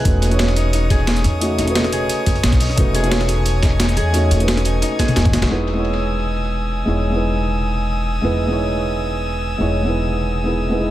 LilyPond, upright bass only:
\new Staff \with { instrumentName = "Upright bass" } { \clef bass \time 4/4 \key e \major \tempo 4 = 176 e,,2.~ e,,8 e,8~ | e,8 e,,4. r8 fis,,8 b,,4 | e,,2.~ e,,8 e,8~ | e,8 e,,4. r4 e,,8. b,,16 |
e,,1 | e,,1 | e,,1 | e,,1 | }